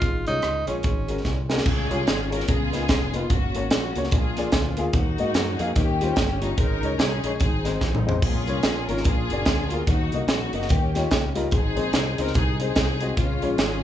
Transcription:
Already playing: tenor saxophone F4
0.01 fingered electric bass G#1, upright piano G#2, kick, closed hi-hat
0.27 fingered electric bass C2, upright piano G#3 C#4 F4 C#5, tenor saxophone D#4, closed hi-hat
0.42 fingered electric bass C#2, cross-stick, closed hi-hat
0.67 fingered electric bass A#1, upright piano G#3 C#4 F4 C#5, tenor saxophone C#4, closed hi-hat
0.83 fingered electric bass G#1, upright piano G#2, kick, closed hi-hat
1.08 upright piano G#3 C#4 F#4 A#4, cross-stick, closed hi-hat
1.25 fingered electric bass C2, kick, snare
1.49 upright piano G#3 C#4 F#4 A#4, snare
1.58 snare
1.65 fingered electric bass C#2, upright piano C#3, string section C#4 F4 G#4, kick, crash
1.89 fingered electric bass C2, upright piano G#3 C#4 F4 C#5, closed hi-hat
2.07 fingered electric bass G#1, snare, closed hi-hat
2.31 upright piano G#3 C#4 F4 C#5, string section A#4, closed hi-hat
2.40 snare
2.48 fingered electric bass C#2, upright piano C#3, string section B3 F4 G#4, kick, closed hi-hat
2.72 upright piano A#3 D#4 F4 B4, snare, closed hi-hat
2.89 fingered electric bass F1, kick, snare, closed hi-hat
3.14 upright piano A#3 D#4 F4 B4, string section F4, closed hi-hat
3.30 fingered electric bass F#1, string section A#3 C#4 F#4, kick, closed hi-hat
3.55 fingered electric bass G#1, upright piano A#3 C#4 F#4 C#5, closed hi-hat
3.71 fingered electric bass A#1, string section A#3 C#4 F#4, snare, closed hi-hat
3.96 fingered electric bass C#2, upright piano A#3 C#4 F#4 C#5, closed hi-hat
4.04 snare
4.11 fingered electric bass A#1, upright piano A#2, string section D4 F4, kick, closed hi-hat
4.16 string section G#4
4.36 upright piano A#3 F4 G#4 D5, snare, closed hi-hat
4.52 fingered electric bass D2, kick, snare, closed hi-hat
4.77 upright piano A#3 F4 G#4 F5, closed hi-hat
4.93 fingered electric bass D#2, upright piano D#3, string section A#3 D#4 F#4, kick, closed hi-hat
5.18 fingered electric bass G#2, upright piano A#3 D#4 F#4 D#5, closed hi-hat
5.34 fingered electric bass F#2, snare, closed hi-hat
5.59 fingered electric bass F2, upright piano A#3 D#4 F#4 F5, string section G#4, closed hi-hat
5.75 fingered electric bass D#2, upright piano D#3, string section A#3 C#4 G4, kick, closed hi-hat
6.01 upright piano G3 C#4 F4 C5, closed hi-hat
6.16 fingered electric bass G1, kick, snare, closed hi-hat
6.41 upright piano G3 C#4 F4 C#5, string section D#4, closed hi-hat
6.57 fingered electric bass G#1, upright piano G#2, string section C#4 D#4 A#4, kick, closed hi-hat
6.83 fingered electric bass C#2, upright piano G#3 C#4 D#4 C#5, closed hi-hat
6.99 fingered electric bass C2, string section C#4 D#4 G#4, snare, closed hi-hat
7.24 fingered electric bass A#1, upright piano G#3 C#4 D#4 C#5, closed hi-hat
7.40 fingered electric bass G#1, upright piano G#2, string section C4 D#4 G#4, kick, closed hi-hat
7.65 upright piano G#3 C4 D#4 C5, snare, closed hi-hat
7.81 fingered electric bass A1, kick, snare
7.95 mid tom
8.06 upright piano G#3 C4 D#4 C5, floor tom
8.22 fingered electric bass A#1, upright piano A#2, string section C#4 F4 G#4, kick, splash
8.47 fingered electric bass C2, upright piano A#3 C#4 F4 C#5, closed hi-hat
8.63 fingered electric bass A#1, snare, closed hi-hat
8.88 fingered electric bass G#1, upright piano A#3 C#4 F4 C#5, string section A#4, closed hi-hat
8.97 snare
9.04 fingered electric bass A#1, upright piano A#2, string section D4 F4 G#4, kick, closed hi-hat
9.29 fingered electric bass F#1, upright piano A#3 F#4 G#4 D5, closed hi-hat
9.46 fingered electric bass D2, kick, snare, closed hi-hat
9.70 upright piano A#3 F#4 G#4 A#4, string section F4, closed hi-hat
9.87 fingered electric bass D#2, upright piano D#3, string section A#3 D#4 F#4, kick, closed hi-hat
10.11 fingered electric bass C2, upright piano A#3 D#4 F#4 D#5, closed hi-hat
10.27 fingered electric bass A#1, string section A#3 D#4 F#4, snare, closed hi-hat
10.53 fingered electric bass F#1, upright piano A#3 D#4 F#4 D#5, closed hi-hat
10.62 snare
10.69 fingered electric bass D#2, upright piano D#3, string section A#3 C#4 G4, kick, closed hi-hat
10.95 upright piano G3 D#4 F4 C#5, snare, closed hi-hat
11.11 fingered electric bass C#2, kick, snare, closed hi-hat
11.35 upright piano G3 D#4 F4 A#4, closed hi-hat
11.51 fingered electric bass G#1, upright piano G#2, string section C4 D#4 G#4, kick, closed hi-hat
11.75 fingered electric bass A#1, upright piano G#3 C4 D#4 C5, closed hi-hat
11.93 fingered electric bass C2, snare, closed hi-hat
12.18 fingered electric bass C#2, upright piano G#3 C4 D#4 C5, string section A#4, closed hi-hat
12.27 snare
12.34 fingered electric bass C2, string section C4 D#4 G#4, kick, closed hi-hat
12.60 upright piano G#3 C4 D#4 C5, string section C4 D#4 G#4, closed hi-hat
12.76 fingered electric bass C2, kick, snare, closed hi-hat
13.01 upright piano G#3 C4 D#4 F#4, closed hi-hat
13.17 fingered electric bass C#2, upright piano C#3, string section G#3 C#4 F4, kick, closed hi-hat
13.42 fingered electric bass A#1, upright piano G#3 C#4 F4 C#5, closed hi-hat
13.58 fingered electric bass G#1, string section C#4 F4 G#4, snare, closed hi-hat

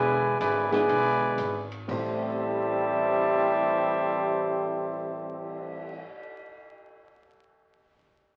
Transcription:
Already playing: upright bass E1, trombone section B2 D3 G#3, trumpet section E4 B4 D5 G#5
0.37 upright bass G#1, trombone section B2 D3 G#3, trumpet section E4 B4 D5 G#5, kick, hi-hat pedal, ride
0.69 trombone section B2 D3 G#3, grand piano G#3 B3 D4 E4 G#4, trumpet section E4 B4 D5 G#5, snare, ride
0.88 upright bass B1, kick, ride
1.37 upright bass G#1, kick, hi-hat pedal, ride
1.72 ride
1.88 upright bass A1, grand piano A2 A3 C4 G4 C5, trombone section A2 E3 G3 C4, trumpet section G4 C5 E5 A5, kick, crash
2.23 cymbal swell

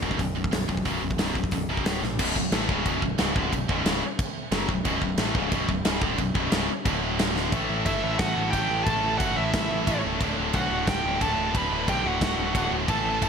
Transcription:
0.02 picked electric bass B0, distorted electric guitar B1 F#2 B2, kick
0.11 kick
0.19 picked electric bass B0, distorted electric guitar B1 F#2, kick, open hi-hat
0.36 distorted electric guitar B1 F#2
0.44 kick
0.52 picked electric bass B0, distorted electric guitar B1 F#2, snare, open hi-hat
0.69 picked electric bass B0, distorted electric guitar B1 F#2, kick
0.77 kick
0.85 picked electric bass B0, distorted electric guitar B1 F#2 B2, kick, open hi-hat
1.02 picked electric bass B0, distorted electric guitar B1 F#2
1.11 kick
1.18 picked electric bass B0, distorted electric guitar B1 F#2 B2, snare, open hi-hat
1.35 distorted electric guitar B1 F#2, kick
1.44 kick
1.51 picked electric bass B0, distorted electric guitar B1 F#2, kick, open hi-hat
1.69 picked electric bass B0, distorted electric guitar B1 F#2 B2
1.77 kick
1.85 picked electric bass D1, distorted electric guitar D2 A2 D3, snare, open hi-hat
2.02 picked electric bass A#1, distorted electric guitar D2 A2, snare
2.19 picked electric bass B0, distorted electric guitar B1 F#2 B2, kick, crash
2.36 picked electric bass B0, distorted electric guitar B1 F#2, kick
2.52 picked electric bass A1, distorted electric guitar A2 E3 A3, snare, crash
2.69 picked electric bass C#1, distorted electric guitar C#2 G#2 C#3, kick
2.85 picked electric bass B0, distorted electric guitar B1 F#2 B2, kick, crash
3.02 picked electric bass B0, distorted electric guitar B1 F#2, kick
3.18 picked electric bass C#1, distorted electric guitar C#2 G#2 C#3, snare, crash
3.35 picked electric bass D1, distorted electric guitar D2 A2 D3, kick
3.52 picked electric bass B0, distorted electric guitar B1 F#2, kick, crash
3.68 picked electric bass B0, distorted electric guitar B1 F#2 B2, kick
3.85 picked electric bass C#1, distorted electric guitar C#2 G#2 C#3, snare, crash
4.19 kick, crash
4.52 picked electric bass F#1, distorted electric guitar F#2 C#3 F#3, snare, crash
4.68 picked electric bass B0, distorted electric guitar B1 F#2, kick
4.85 picked electric bass B0, distorted electric guitar B1 F#2 B2, kick, crash
5.02 picked electric bass B0, distorted electric guitar B1 F#2, kick
5.18 picked electric bass A1, distorted electric guitar A2 E3 A3, snare, crash
5.35 picked electric bass C#1, distorted electric guitar C#2 G#2 C#3, kick
5.51 picked electric bass B0, distorted electric guitar B1 F#2 B2, kick, crash
5.68 picked electric bass B0, distorted electric guitar B1 F#2, kick
5.84 picked electric bass C#1, distorted electric guitar C#2 G#2 C#3, snare, crash
6.01 picked electric bass D1, distorted electric guitar D2 A2 D3, kick
6.18 picked electric bass B0, distorted electric guitar B1 F#2, kick, crash
6.35 picked electric bass B0, distorted electric guitar B1 F#2 B2, kick
6.52 picked electric bass C#1, distorted electric guitar C#2 G#2 C#3, snare, crash
6.84 picked electric bass D1, distorted electric guitar D2 A2 D3, kick, crash
7.19 snare, crash
7.36 snare
7.52 picked electric bass A1, distorted electric guitar A2 E3 A3 C#4 E4 A4, kick, crash
7.69 picked electric bass A1
7.86 picked electric bass G1, lead electric guitar E4 E5, kick, crash
8.02 picked electric bass A1, distorted electric guitar A2 E3 A3
8.18 picked electric bass A1, lead electric guitar F#4 F#5, kick, snare, crash
8.35 picked electric bass A1, distorted electric guitar A2 E3 A3 C#4 E4 A4
8.51 picked electric bass A1, distorted electric guitar A2 E3 A3 C#4 E4 A4, lead electric guitar G4 G5, kick, crash
8.70 picked electric bass A1
8.84 picked electric bass A1, distorted electric guitar A2 E3 A3 C#4 E4 A4, lead electric guitar A4 A5, kick, crash
9.03 picked electric bass A1
9.18 picked electric bass G1, lead electric guitar F#4 F#5, kick, crash
9.35 picked electric bass A1, distorted electric guitar A2 E3 A3, lead electric guitar E4 E5
9.53 picked electric bass A1, kick, snare, crash
9.69 picked electric bass A1, distorted electric guitar A2 E3 A3 C#4 E4 A4
9.86 picked electric bass A1, distorted electric guitar A2 E3 A3 C#4 E4 A4, kick, crash
10.05 picked electric bass C#1
10.20 picked electric bass D1, distorted electric guitar D2 A2 D3 F#3 A3 D4, kick, crash
10.38 picked electric bass D1
10.53 picked electric bass B1, lead electric guitar F#4 F#5, kick, crash
10.70 picked electric bass D1, distorted electric guitar D2 A2 D3
10.87 picked electric bass D1, lead electric guitar G4 G5, kick, snare, crash
11.04 picked electric bass D1, distorted electric guitar D2 A2 D3 F#3 A3 D4
11.21 picked electric bass D1, distorted electric guitar D2 A2 D3 F#3 A3 D4, lead electric guitar A4 A5, kick, crash
11.37 picked electric bass D1
11.54 picked electric bass D1, distorted electric guitar D2 A2 D3 F#3 A3 D4, lead electric guitar B4 B5, kick, crash
11.71 picked electric bass D1
11.88 picked electric bass B1, lead electric guitar G4 G5, kick, crash
12.04 picked electric bass D1, distorted electric guitar D2 A2 D3, lead electric guitar F#4 F#5
12.21 picked electric bass D1, kick, snare, crash
12.37 picked electric bass D1, distorted electric guitar D2 A2 D3 F#3 A3 D4
12.53 picked electric bass D1, distorted electric guitar D2 A2 D3 F#3 A3 D4, kick, crash
12.71 picked electric bass D1
12.87 picked electric bass A1, distorted electric guitar A2 E3 A3 C#4 E4 A4, lead electric guitar A4 A5, kick, crash
13.04 picked electric bass A1
13.22 picked electric bass G1, lead electric guitar A4 A5, kick, crash

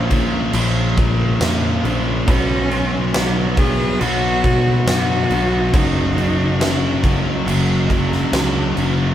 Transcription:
Already playing: picked electric bass A#1, distorted electric guitar C#4, cello C#4, string section A#4 C#5 F5 C#6
0.09 distorted electric guitar A#2 F3 A#3 C#4, kick, crash
0.52 picked electric bass A#1, distorted electric guitar A#2 F3 A#3 C#4, crash
0.96 distorted electric guitar A#2 F3 A#3 C#4, kick, crash
1.40 picked electric bass F2, distorted electric guitar A#2 F3 A#3 C#4, snare, crash
1.83 picked electric bass A#1, distorted electric guitar A#2 F3 A#3 C#4, crash
2.27 picked electric bass B1, distorted electric guitar B2 F#3 B3 D4, cello C#4, string section B4 C#5 F#5, kick, crash
2.70 distorted electric guitar B2 F#3 B3 D4, crash
3.13 distorted electric guitar B2 F#3 B3 D4, snare, crash
3.56 distorted electric guitar B2 F#3 B3 D4, cello G#4, kick, crash
4.00 picked electric bass B1, distorted electric guitar B2 F#3 B3 D4, cello F#4, crash
4.43 distorted electric guitar B2 F#3 B3 D4, kick, crash
4.86 picked electric bass F#2, distorted electric guitar B2 F#3 B3 D4, cello F#4, snare, crash
5.30 picked electric bass B1, distorted electric guitar B2 F#3 B3 D4, crash
5.71 picked electric bass F#1, distorted electric guitar F#2 C#3 F#3 A#3 C#4, string section A#4 D#5, kick, crash
5.75 cello D#4
6.15 distorted electric guitar F#2 C#3 F#3 A#3 C#4, crash
6.58 distorted electric guitar F#2 C#3 F#3 A#3 C#4, snare, crash
7.03 distorted electric guitar F#2 C#3 F#3 A#3 C#4, kick, crash
7.45 picked electric bass F#1, distorted electric guitar F#2 C#3 F#3 A#3 C#4, crash
7.89 distorted electric guitar F#2 C#3 F#3 A#3 C#4, kick, crash
8.12 snare
8.31 picked electric bass C#2, distorted electric guitar F#2 C#3 F#3 A#3 C#4, snare, crash
8.75 picked electric bass F#1, distorted electric guitar F#2 C#3 F#3 A#3 C#4, crash

